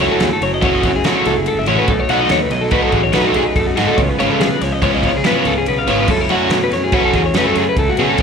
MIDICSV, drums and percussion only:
0, 0, Header, 1, 2, 480
1, 0, Start_track
1, 0, Tempo, 420168
1, 2155, Time_signature, 5, 2, 24, 8
1, 9395, End_track
2, 0, Start_track
2, 0, Title_t, "Drums"
2, 228, Note_on_c, 9, 51, 106
2, 237, Note_on_c, 9, 38, 113
2, 342, Note_off_c, 9, 51, 0
2, 352, Note_off_c, 9, 38, 0
2, 477, Note_on_c, 9, 51, 73
2, 591, Note_off_c, 9, 51, 0
2, 711, Note_on_c, 9, 51, 102
2, 715, Note_on_c, 9, 36, 106
2, 826, Note_off_c, 9, 51, 0
2, 829, Note_off_c, 9, 36, 0
2, 952, Note_on_c, 9, 51, 76
2, 954, Note_on_c, 9, 36, 79
2, 1066, Note_off_c, 9, 51, 0
2, 1068, Note_off_c, 9, 36, 0
2, 1188, Note_on_c, 9, 51, 100
2, 1198, Note_on_c, 9, 38, 105
2, 1303, Note_off_c, 9, 51, 0
2, 1312, Note_off_c, 9, 38, 0
2, 1432, Note_on_c, 9, 51, 75
2, 1546, Note_off_c, 9, 51, 0
2, 1667, Note_on_c, 9, 51, 101
2, 1781, Note_off_c, 9, 51, 0
2, 1899, Note_on_c, 9, 51, 76
2, 2013, Note_off_c, 9, 51, 0
2, 2143, Note_on_c, 9, 51, 102
2, 2149, Note_on_c, 9, 36, 108
2, 2258, Note_off_c, 9, 51, 0
2, 2263, Note_off_c, 9, 36, 0
2, 2386, Note_on_c, 9, 51, 74
2, 2395, Note_on_c, 9, 38, 37
2, 2500, Note_off_c, 9, 51, 0
2, 2509, Note_off_c, 9, 38, 0
2, 2618, Note_on_c, 9, 51, 101
2, 2627, Note_on_c, 9, 38, 116
2, 2733, Note_off_c, 9, 51, 0
2, 2742, Note_off_c, 9, 38, 0
2, 2863, Note_on_c, 9, 51, 71
2, 2977, Note_off_c, 9, 51, 0
2, 3094, Note_on_c, 9, 51, 97
2, 3104, Note_on_c, 9, 36, 111
2, 3208, Note_off_c, 9, 51, 0
2, 3218, Note_off_c, 9, 36, 0
2, 3337, Note_on_c, 9, 51, 66
2, 3343, Note_on_c, 9, 36, 78
2, 3451, Note_off_c, 9, 51, 0
2, 3457, Note_off_c, 9, 36, 0
2, 3573, Note_on_c, 9, 51, 100
2, 3582, Note_on_c, 9, 38, 119
2, 3687, Note_off_c, 9, 51, 0
2, 3696, Note_off_c, 9, 38, 0
2, 3818, Note_on_c, 9, 51, 78
2, 3932, Note_off_c, 9, 51, 0
2, 4064, Note_on_c, 9, 36, 108
2, 4066, Note_on_c, 9, 51, 97
2, 4178, Note_off_c, 9, 36, 0
2, 4180, Note_off_c, 9, 51, 0
2, 4309, Note_on_c, 9, 51, 83
2, 4318, Note_on_c, 9, 38, 36
2, 4423, Note_off_c, 9, 51, 0
2, 4432, Note_off_c, 9, 38, 0
2, 4545, Note_on_c, 9, 51, 108
2, 4546, Note_on_c, 9, 36, 111
2, 4659, Note_off_c, 9, 51, 0
2, 4660, Note_off_c, 9, 36, 0
2, 4797, Note_on_c, 9, 51, 79
2, 4911, Note_off_c, 9, 51, 0
2, 5034, Note_on_c, 9, 51, 114
2, 5043, Note_on_c, 9, 38, 117
2, 5148, Note_off_c, 9, 51, 0
2, 5157, Note_off_c, 9, 38, 0
2, 5272, Note_on_c, 9, 51, 74
2, 5281, Note_on_c, 9, 38, 34
2, 5386, Note_off_c, 9, 51, 0
2, 5395, Note_off_c, 9, 38, 0
2, 5508, Note_on_c, 9, 36, 104
2, 5509, Note_on_c, 9, 51, 105
2, 5622, Note_off_c, 9, 36, 0
2, 5623, Note_off_c, 9, 51, 0
2, 5748, Note_on_c, 9, 36, 77
2, 5751, Note_on_c, 9, 51, 70
2, 5862, Note_off_c, 9, 36, 0
2, 5865, Note_off_c, 9, 51, 0
2, 5987, Note_on_c, 9, 51, 99
2, 5996, Note_on_c, 9, 38, 104
2, 6101, Note_off_c, 9, 51, 0
2, 6110, Note_off_c, 9, 38, 0
2, 6227, Note_on_c, 9, 51, 74
2, 6341, Note_off_c, 9, 51, 0
2, 6468, Note_on_c, 9, 51, 97
2, 6582, Note_off_c, 9, 51, 0
2, 6711, Note_on_c, 9, 51, 70
2, 6825, Note_off_c, 9, 51, 0
2, 6943, Note_on_c, 9, 49, 100
2, 6949, Note_on_c, 9, 36, 113
2, 7057, Note_off_c, 9, 49, 0
2, 7064, Note_off_c, 9, 36, 0
2, 7185, Note_on_c, 9, 51, 71
2, 7300, Note_off_c, 9, 51, 0
2, 7428, Note_on_c, 9, 51, 103
2, 7437, Note_on_c, 9, 38, 122
2, 7542, Note_off_c, 9, 51, 0
2, 7551, Note_off_c, 9, 38, 0
2, 7671, Note_on_c, 9, 51, 69
2, 7680, Note_on_c, 9, 38, 31
2, 7785, Note_off_c, 9, 51, 0
2, 7795, Note_off_c, 9, 38, 0
2, 7906, Note_on_c, 9, 51, 102
2, 7909, Note_on_c, 9, 36, 112
2, 8020, Note_off_c, 9, 51, 0
2, 8023, Note_off_c, 9, 36, 0
2, 8151, Note_on_c, 9, 36, 81
2, 8151, Note_on_c, 9, 51, 73
2, 8265, Note_off_c, 9, 36, 0
2, 8265, Note_off_c, 9, 51, 0
2, 8384, Note_on_c, 9, 51, 103
2, 8393, Note_on_c, 9, 38, 115
2, 8498, Note_off_c, 9, 51, 0
2, 8507, Note_off_c, 9, 38, 0
2, 8630, Note_on_c, 9, 51, 82
2, 8745, Note_off_c, 9, 51, 0
2, 8873, Note_on_c, 9, 36, 115
2, 8874, Note_on_c, 9, 51, 107
2, 8987, Note_off_c, 9, 36, 0
2, 8988, Note_off_c, 9, 51, 0
2, 9106, Note_on_c, 9, 51, 81
2, 9220, Note_off_c, 9, 51, 0
2, 9344, Note_on_c, 9, 51, 113
2, 9352, Note_on_c, 9, 36, 114
2, 9395, Note_off_c, 9, 36, 0
2, 9395, Note_off_c, 9, 51, 0
2, 9395, End_track
0, 0, End_of_file